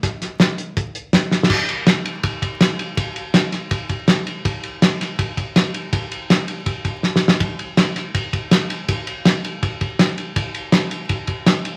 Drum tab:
CC |------------------------|x-----------------------|------------------------|------------------------|
RD |------------------------|---x--x--x--x--x--x--x--|x--x--x--x--x--x--x--x--|x--x--x--x--x--x--x--x--|
HH |x--x--x--x--x--x--x-----|------------------------|------------------------|------------------------|
SD |o--o--o-----------o--o-o|------o-----------o-----|------o--o--------o-----|------o--o--------o-----|
BD |o-----------o-----o-----|o-----------o--o--------|o-----------o--o--------|o-----------o--o--------|

CC |------------------------|------------------------|------------------------|------------------------|
RD |x--x--x--x--x--x--------|x--x--x--x--x--x--x--x--|x--x--x--x--x--x--x--x--|x--x--x--x--x--x--x--x--|
HH |------------------------|------------------------|------------------------|------------------------|
SD |------o-----------o-o-o-|------o--o--------o-----|------o-----------o-----|------o-----------o-----|
BD |o-----------o--o--------|o-----------o--o--------|o-----------o--o--------|o-----------o--o--------|